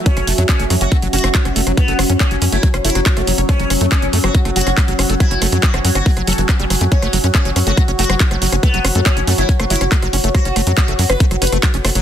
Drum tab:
HH |x-x-o-x-x-x-o-x-x-x-oxx-x-x-o-x-|x-x-o-x-x-x-o-x-x-x-oxx-x-x-o-x-|x-x-o-x-x-x-o-x-x-x-oxx-x-x-o-x-|x-x-o-x-x-x-o-x-o-x-oxx-x-x-o-x-|
CP |--------x---------------x-------|--------x---------------x-------|--------x---------------x-------|--------x---------------x-------|
SD |--r-----r---r---r-----r---r---r-|----r---r---------r---r---r-----|r---r---r-----r---r---r-----r---|r---r-----r---r---r-----r---r---|
BD |o-------o-------o-------o-------|o-------o-------o-------o-------|o-------o-------o-------o-------|o-------o-------o-------o-------|

HH |x-x-o-x-x-x-o-x-x-x-oxx-x-x-o-x-|x-x-o-x-x-x-o-x-x-x-oxx-x-x-o-x-|x-x-o-x-x-x-o-x-x-x-oxx-x-x-o-x-|
CP |--------x---------------x-------|--------x---------------x-------|--------x---------------x-------|
SD |--r-----r---r---r-----r---r---r-|----r---r---------r---r---r-----|r---r---r-----r---r---r-----r---|
BD |o-------o-------o-------o-------|o-------o-------o-------o-------|o-------o-------o-------o-------|